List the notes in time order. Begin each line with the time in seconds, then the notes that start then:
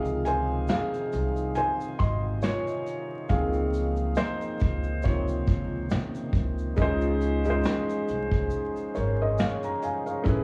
Already playing: C#2 C3 D#3 F3 D#4 G#4 F5
0.05 shaker
0.25 C5 G#5, closed hi-hat, shaker
0.68 G#4 F5, snare, shaker
0.94 shaker
1.12 C2, closed hi-hat, shaker
1.36 shaker
1.55 C5 G#5, shaker
1.81 shaker
1.99 G#1 D#5 C6, kick, closed hi-hat, shaker
2.42 F4 C#5, snare, shaker
2.67 shaker
2.86 closed hi-hat, shaker
3.29 C#2 D#3 F3 A#3 C4 G#4 F5, kick, shaker
3.53 shaker
3.73 closed hi-hat, shaker
3.96 shaker
4.15 D#4 C5, snare, shaker
4.41 shaker
4.60 C#2, kick, closed hi-hat, shaker
4.83 shaker
5.02 C3 D#3 F3 F4 C#5, kick, shaker
5.28 shaker
5.47 C#2, kick, closed hi-hat, shaker
5.90 C#3, snare, shaker
6.15 shaker
6.33 C#2, kick, closed hi-hat, shaker
6.58 shaker
6.76 C#2 F3 G#3 C#4 D#4 G#4 C5, kick, shaker
6.80 F4 C5
7.01 shaker
7.21 closed hi-hat, shaker
7.45 G#3 C#4 D#4, shaker
7.49 F4 C5
7.63 snare, shaker
7.90 shaker
8.08 C2, closed hi-hat, shaker
8.31 kick
8.50 shaker
8.76 shaker
8.95 G#1 A#4 C#5, closed hi-hat, shaker
9.21 C5 D#5
9.38 C#5 F5, snare, shaker
9.63 A#5, shaker
9.82 F5 G#5, closed hi-hat, shaker
10.06 C#5 F5, shaker
10.24 A1 A3 B3 C#4 E4 G#4, kick, shaker
10.29 B4